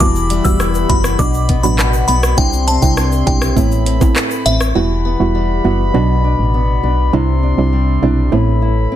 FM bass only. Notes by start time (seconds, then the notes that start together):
0.00 E1
0.45 E1
0.90 F#1
1.19 B1
1.64 A1
2.08 B1
2.38 C2
2.83 C2
3.27 B1
3.57 A1
4.46 A1
4.75 E1
5.20 E1
5.65 F#1
5.94 B1
6.39 A1
6.83 B1
7.13 C2
7.58 C2
8.02 B1
8.32 A1